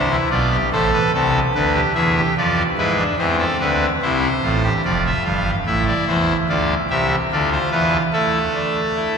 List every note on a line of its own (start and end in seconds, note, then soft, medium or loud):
0.00 0.16 C2 medium
0.00 0.16 C3 medium
0.00 0.16 C5 medium
0.11 0.29 E4 medium
0.31 0.57 B1 medium
0.31 0.57 B2 medium
0.31 0.49 F4 medium
0.31 0.57 D5 medium
0.51 0.69 G4 medium
0.72 0.98 A1 medium
0.72 0.98 A2 medium
0.72 1.12 A4 medium
0.72 0.90 C5 medium
0.93 1.11 B4 medium
1.14 1.39 C2 medium
1.14 1.40 C3 medium
1.14 1.40 A4 medium
1.55 1.81 D2 medium
1.55 1.80 D3 medium
1.55 1.81 B4 medium
1.74 1.92 G4 medium
1.95 2.21 E2 medium
1.95 2.21 E3 medium
1.95 2.13 G#4 medium
1.95 2.21 E5 medium
2.16 2.34 G4 medium
2.37 2.63 F2 medium
2.37 2.63 F3 medium
2.37 2.63 F4 medium
2.37 2.63 D5 medium
2.78 3.03 G#2 medium
2.78 3.03 G#3 medium
2.78 2.96 E4 medium
2.78 3.04 B4 medium
2.97 3.16 D4 medium
3.18 3.44 E2 medium
3.18 3.44 E3 medium
3.18 3.90 C4 medium
3.18 3.36 C5 medium
3.39 3.57 A4 medium
3.60 3.86 D2 medium
3.60 3.86 D3 medium
3.60 3.86 B4 medium
4.02 4.28 C2 medium
4.02 4.28 C3 medium
4.02 4.28 E4 medium
4.02 4.73 C5 medium
4.43 4.69 A1 medium
4.43 4.69 A2 medium
4.43 4.61 F4 medium
4.64 4.82 G4 medium
4.85 5.10 F1 medium
4.85 5.11 F2 medium
4.85 5.56 F4 medium
4.85 5.03 D5 medium
5.06 5.24 E5 medium
5.25 5.51 G1 soft
5.25 5.51 G2 medium
5.25 5.51 F5 medium
5.66 5.92 A1 medium
5.66 5.92 A2 medium
5.66 6.37 E4 medium
5.66 5.84 E5 medium
5.87 6.05 D5 medium
6.08 6.33 E2 medium
6.08 6.33 E3 medium
6.08 6.33 C5 medium
6.49 6.74 D2 medium
6.49 6.74 D3 medium
6.49 6.74 F4 medium
6.49 6.74 D5 medium
6.90 7.15 C2 medium
6.90 7.15 C3 medium
6.90 7.15 G4 medium
6.90 7.15 E5 medium
7.32 7.57 D2 medium
7.32 7.57 D3 medium
7.32 8.03 F4 medium
7.32 7.49 D5 medium
7.52 7.69 C5 medium
7.71 7.97 E2 medium
7.71 7.97 E3 medium
7.71 7.97 B4 medium
8.13 9.18 A3 medium
8.13 8.39 E4 medium
8.13 9.18 A4 medium
8.54 8.81 D4 soft
8.96 9.18 E4 soft